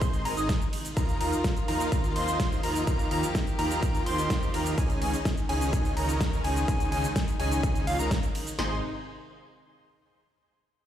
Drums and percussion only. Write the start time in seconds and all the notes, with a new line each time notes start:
0.01 kick, closed hi-hat, shaker
0.13 closed hi-hat, shaker
0.25 open hi-hat, ride
0.37 closed hi-hat, shaker
0.49 kick, snare, closed hi-hat, shaker
0.62 shaker
0.73 open hi-hat, ride
0.85 closed hi-hat, shaker
0.97 kick, closed hi-hat, shaker
1.09 closed hi-hat, shaker
1.21 open hi-hat, ride
1.32 closed hi-hat, shaker
1.44 kick, snare, closed hi-hat, shaker
1.56 closed hi-hat, shaker
1.68 open hi-hat, ride
1.80 closed hi-hat, shaker
1.92 kick, closed hi-hat, shaker
2.04 closed hi-hat, shaker
2.16 open hi-hat, ride
2.28 closed hi-hat, shaker
2.40 kick, snare, closed hi-hat, shaker
2.52 shaker
2.63 open hi-hat, ride
2.75 closed hi-hat, shaker
2.87 kick, closed hi-hat, shaker
2.99 closed hi-hat, shaker
3.11 open hi-hat, ride
3.23 closed hi-hat, shaker
3.35 kick, snare, closed hi-hat, shaker
3.47 closed hi-hat, shaker
3.59 open hi-hat, ride
3.71 closed hi-hat, shaker
3.83 kick, closed hi-hat, shaker
3.95 closed hi-hat, shaker
4.06 open hi-hat, ride
4.18 closed hi-hat, shaker
4.30 kick, snare, closed hi-hat, shaker
4.43 shaker
4.54 open hi-hat, ride
4.66 closed hi-hat, shaker
4.78 kick, closed hi-hat, shaker
4.90 closed hi-hat, shaker
5.02 open hi-hat, ride
5.14 closed hi-hat, shaker
5.25 kick, snare, closed hi-hat, shaker
5.37 closed hi-hat, shaker
5.49 open hi-hat, ride
5.61 closed hi-hat, shaker
5.73 kick, closed hi-hat, shaker
5.85 closed hi-hat, shaker
5.97 open hi-hat, ride
6.09 closed hi-hat, shaker
6.21 kick, snare, closed hi-hat, shaker
6.33 shaker
6.44 open hi-hat, ride
6.56 closed hi-hat, shaker
6.68 kick, closed hi-hat, shaker
6.80 closed hi-hat, shaker
6.92 open hi-hat, ride
7.04 closed hi-hat, shaker
7.16 kick, snare, closed hi-hat, shaker
7.28 closed hi-hat, shaker
7.40 open hi-hat, ride
7.52 closed hi-hat, shaker
7.63 kick, closed hi-hat, shaker
7.75 closed hi-hat, shaker
7.87 open hi-hat, ride
7.99 closed hi-hat, shaker
8.11 kick, snare, closed hi-hat, shaker
8.23 closed hi-hat, shaker
8.35 open hi-hat, ride
8.47 closed hi-hat, shaker
8.59 snare